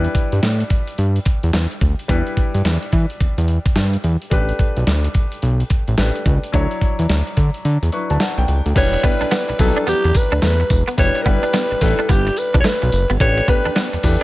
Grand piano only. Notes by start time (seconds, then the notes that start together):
Already playing: G3 D4 E4 B4
2.08 G3 D4 E4 B4
4.30 A3 D4 G4 B4
5.97 A3 D4 G4 B4
6.52 F#3 D4 E4 C#5
7.92 F#3 D4 E4 B4 C#6
8.10 A5
8.20 F#5
8.38 G5
8.75 G3 D4 E4 B4
9.03 G3 D4 E4 B4
9.59 F#3 D4 E4 B4
9.65 G3
10.97 G3 D4 E4 B4
11.25 G3 D4 E4 B4
11.81 G3 D4 E4 B4
13.20 A3 D4 G4 B4
13.47 A3 D4 G4 B4
14.03 A3 D4 G4 B4